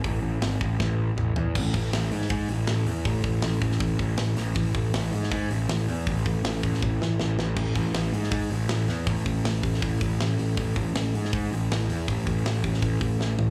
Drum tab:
CC |----------------|x---------------|----------------|----------------|
HH |o---o-----------|--o-o-o-o-o-o-o-|o-o-o-o-o-o-o-o-|o-o-o-o-o-o-o-o-|
SD |----o---o-------|----o--o----o---|----o--o----o-o-|----o--o----o---|
T1 |----------------|----------------|----------------|----------------|
T2 |------------o---|----------------|----------------|----------------|
FT |--------------o-|----------------|----------------|----------------|
BD |o-----o-o-------|o-o-----o-------|o-o---o-o-o-----|o-o-----o-------|

CC |----------------|x---------------|----------------|----------------|
HH |o-o-o-o---------|--o-o-o-o-o-o-o-|o-o-o-o-o-o-o-o-|o-o-o-o-o-o-o-o-|
SD |----o--o--o-o-o-|----o--o----o-o-|----o--o----o---|----o--o----o---|
T1 |--------o-------|----------------|----------------|----------------|
T2 |----------------|----------------|----------------|----------------|
FT |----------------|----------------|----------------|----------------|
BD |o-o---o-o-------|o-o-----o-------|o-o---o-o-o-----|o-o-----o-------|

CC |----------------|
HH |o-o-o-o-o-o-----|
SD |----o--o----o---|
T1 |----------------|
T2 |----------------|
FT |--------------o-|
BD |o-o---o-o-o-----|